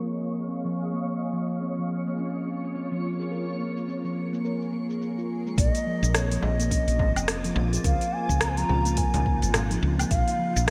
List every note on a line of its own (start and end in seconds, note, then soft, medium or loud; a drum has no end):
0.00 1.03 G#4 medium
0.00 5.59 C#5 medium
0.00 1.03 D#5 medium
0.00 1.03 F5 medium
0.21 0.48 A#3 medium
0.38 cabasa medium
0.49 0.64 C4 medium
0.49 cabasa soft
0.65 0.92 F3 medium
0.94 1.04 A#3 medium
0.94 cabasa medium
1.05 1.21 A#3 medium
1.05 3.30 A#3 medium
1.05 3.30 F4 medium
1.05 3.30 C#5 medium
1.05 cabasa soft
1.23 cabasa soft
1.33 1.60 F3 medium
1.51 cabasa medium
1.62 1.77 C4 medium
1.62 cabasa soft
1.79 2.05 F3 medium
1.79 cabasa soft
2.07 2.18 A#3 medium
2.07 cabasa medium
2.18 2.34 C#4 medium
2.18 cabasa medium
2.36 cabasa soft
2.47 2.74 C4 medium
2.64 cabasa medium
2.75 2.90 C4 medium
2.75 cabasa medium
2.91 3.18 F3 medium
2.91 cabasa soft
3.20 3.30 G#4 medium
3.20 cabasa medium
3.31 5.56 G#4 medium
3.31 5.55 A#4 medium
3.31 3.47 A#4 medium
3.31 cabasa soft
3.49 cabasa soft
3.60 3.87 A#3 medium
3.77 cabasa medium
3.88 4.03 C4 medium
3.88 cabasa soft
4.05 4.31 F3 medium
4.05 cabasa soft
4.33 4.44 A#3 medium
4.33 cabasa medium
4.45 4.61 A#4 medium
4.45 cabasa medium
4.62 cabasa soft
4.73 4.89 A#3 medium
4.90 cabasa medium
5.01 5.17 A#3 medium
5.01 cabasa medium
5.18 5.25 F4 medium
5.18 cabasa soft
5.46 5.57 G#3 medium
5.46 cabasa medium
5.57 5.69 A#1 medium
5.57 7.82 A#3 medium
5.57 5.74 A#3 loud
5.57 10.07 F4 medium
5.57 7.82 C5 medium
5.57 6.17 D#5 loud
5.57 kick loud
5.57 open hi-hat medium
5.57 cabasa medium
5.75 open hi-hat soft
5.75 cabasa soft
5.86 6.14 F3 medium
6.03 6.37 A#1 medium
6.03 cabasa medium
6.15 6.30 C4 medium
6.15 6.44 C#5 loud
6.15 cross-stick loud
6.15 open hi-hat medium
6.15 cabasa medium
6.32 6.58 F3 medium
6.32 open hi-hat soft
6.32 cabasa soft
6.42 6.79 A#1 medium
6.42 7.56 D#5 loud
6.42 frame drum medium
6.59 6.71 A#3 loud
6.59 open hi-hat soft
6.59 cabasa medium
6.71 6.87 C#4 loud
6.71 kick loud
6.71 open hi-hat medium
6.71 cabasa medium
6.88 7.16 A#1 medium
6.88 open hi-hat soft
6.88 cabasa soft
6.99 7.26 C4 medium
6.99 kick loud
6.99 frame drum medium
7.16 7.50 F1 medium
7.16 open hi-hat soft
7.16 cabasa medium
7.16 low woodblock medium
7.28 7.43 C4 medium
7.28 cross-stick loud
7.28 open hi-hat medium
7.28 cabasa medium
7.44 7.71 F3 loud
7.44 open hi-hat soft
7.44 cabasa soft
7.56 7.77 A#1 loud
7.56 frame drum medium
7.73 7.83 G#4 medium
7.73 open hi-hat soft
7.73 cabasa medium
7.84 7.96 C#2 loud
7.84 10.08 C#3 medium
7.84 10.09 G#3 medium
7.84 10.08 D#4 medium
7.84 8.00 A#4 medium
7.84 8.15 F5 loud
7.84 kick loud
7.84 open hi-hat medium
7.84 cabasa medium
8.01 open hi-hat soft
8.01 cabasa soft
8.13 8.40 A#3 medium
8.13 8.43 G#5 loud
8.29 8.63 C#2 medium
8.29 kick medium
8.29 cabasa medium
8.41 8.56 C4 medium
8.41 8.50 A#5 loud
8.41 cross-stick loud
8.41 open hi-hat medium
8.41 cabasa medium
8.49 8.59 G#5 medium
8.57 8.84 F3 medium
8.57 8.99 A#5 loud
8.57 open hi-hat soft
8.57 cabasa soft
8.69 9.06 C#2 medium
8.69 frame drum medium
8.85 8.97 A#3 loud
8.85 open hi-hat soft
8.85 cabasa medium
8.97 9.13 A#4 medium
8.97 9.54 G#5 medium
8.97 kick loud
8.97 open hi-hat medium
8.97 cabasa medium
9.14 9.44 C#2 medium
9.14 open hi-hat soft
9.14 frame drum loud
9.14 cabasa soft
9.26 9.53 A#3 medium
9.26 kick loud
9.42 9.76 G#1 medium
9.42 open hi-hat soft
9.42 cabasa medium
9.54 9.69 C4 medium
9.54 cross-stick loud
9.54 open hi-hat medium
9.54 frame drum loud
9.54 cabasa medium
9.71 9.97 F3 medium
9.71 open hi-hat soft
9.71 cabasa soft
9.83 10.03 C#2 loud
9.99 10.09 A#3 loud
9.99 open hi-hat soft
9.99 cabasa medium
9.99 low woodblock medium
10.10 10.22 A#1 loud
10.10 10.26 A#3 loud
10.10 10.70 A#3 medium
10.10 10.70 F4 medium
10.10 10.70 C5 medium
10.10 10.69 F5 loud
10.10 kick loud
10.10 open hi-hat medium
10.10 cabasa medium
10.28 open hi-hat soft
10.28 cabasa soft
10.39 10.66 F3 loud
10.56 10.70 A#1 loud
10.56 cabasa medium